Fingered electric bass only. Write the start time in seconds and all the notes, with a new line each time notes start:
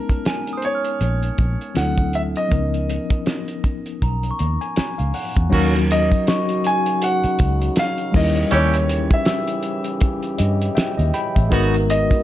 1.01 A#1
1.39 A#1
1.77 D2
2.52 C#2
4.02 B1
4.41 D#2
4.79 muted fingered electric bass stroke
5.00 C#2
5.37 E2
5.53 D#2
7.24 muted fingered electric bass stroke
7.40 C#2
8.15 D#2
8.52 D#2
10.40 G2
10.77 muted fingered electric bass stroke
10.99 D#2
11.37 A1
11.52 G#1